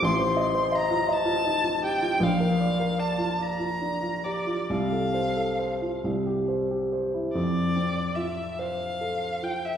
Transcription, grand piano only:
\new Staff \with { instrumentName = "Grand piano" } { \time 6/8 \key f \major \tempo 4. = 48 a,,16 c''16 ees''16 c''16 ees''16 f'16 ees''16 f'16 ees'16 f'16 g'16 f'16 | bes,,16 bes'16 d''16 bes'16 d''16 f'16 d''16 f'16 d'16 f'16 g'16 f'16 | c,16 a'16 c''16 a'16 c''16 f'16 c,16 g'16 c''16 g'16 c''16 e'16 | f,8 c'8 f'8 c''8 a'8 f'8 | }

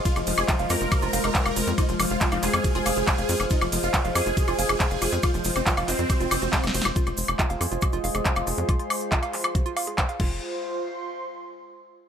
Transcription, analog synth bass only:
\new Staff \with { instrumentName = "Analog synth bass" } { \clef bass \time 4/4 \key f \minor \tempo 4 = 139 r16 f,,16 f,,16 f,,16 r16 f,,16 f,16 f,,16 r16 f,,16 f,,16 f,,16 r16 f,,16 f,,16 f,16 | r16 f,,16 f,,16 f,,16 r16 f,,16 f,,16 f,16 r16 f,,16 f,,16 f,,16 r16 f,,16 f,16 f,,16 | r16 f,,16 f,,16 f,,16 r16 f,,16 f,16 f,,16 r16 f,,16 f,,16 f,,16 r16 f,,16 f,,16 f,16 | r16 f,,16 f,,16 f,,16 r16 f,,16 f,,16 f,16 r16 f,,16 f,,16 f,,16 r16 f,,16 f,,16 f,,16 |
r16 f,,16 f,,16 f,,16 r16 f,,16 f,16 f,,16 r16 f,,16 f,,16 f,,16 r16 f,,16 f,,16 f,16 | r2. r8 f,,8 | r1 | }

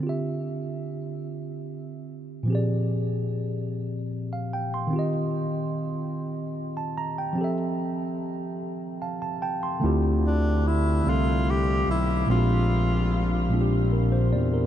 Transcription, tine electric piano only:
\new Staff \with { instrumentName = "Tine electric piano" } { \time 6/8 \key d \minor \tempo 4. = 49 << { r2. | r2 r16 f''16 g''16 c'''16~ | c'''16 r2 a''16 bes''16 g''16~ | g''16 r4. r16 <f'' a''>16 a''16 <g'' a''>16 c'''16~ |
c'''16 r2 r8. | r2 bes'16 c''16 d''16 bes'16 | } \\ { <d c' f' g' e''>2. | <bes, f c' g' aes' d''>2. | <ees c' f' g' ees''>2. | <f c' g' a' e''>2. |
<d a c' e' f' g'>4 r8 <d a c' f' a' e''>4 r8 | <bes, aes c' d' fis' g'>4 r8 <bes, aes c' d' f' g'>4 r8 | } >> }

